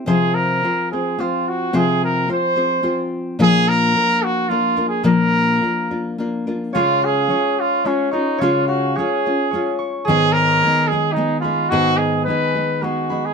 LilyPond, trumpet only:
\new Staff \with { instrumentName = "Trumpet" } { \time 3/4 \key bes \phrygian \tempo 4 = 108 aes'8 bes'4 aes'8 f'8 ges'8 | aes'8 bes'8 c''4. r8 | aes'8 bes'4 ges'8 \tuplet 3/2 { f'4 aes'8 } | bes'2 r4 |
f'8 aes'4 f'8 des'8 ees'8 | f'8 ges'8 aes'4. r8 | aes'8 bes'4 aes'8 ees'8 f'8 | ges'8 aes'8 ces''4 ges'8. aes'16 | }